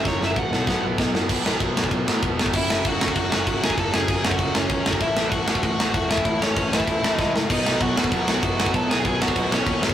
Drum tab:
CC |----------------|x---------------|x---x---x---x---|x---x---x---x---|
RD |----------------|----x---x---x---|----------------|----------------|
SD |o-o---o-o---o-o-|--o---o---o---o-|--o---o---o---o-|--o---o---o---o-|
BD |o---o---o---o---|o---o--oo---o--o|o---o--oo---o--o|o---o--oo---o--o|

CC |x---x---x---x---|x---x---x-------|x---x---x---x---|x---x---x---x---|
RD |----------------|----------------|----------------|----------------|
SD |--o---o---o---o-|--o---o---o-o-o-|--o---o---o---o-|--o---o---o---o-|
BD |o---o--oo---o--o|o---o--oo---o---|o---o--oo---o--o|o---o--oo---o--o|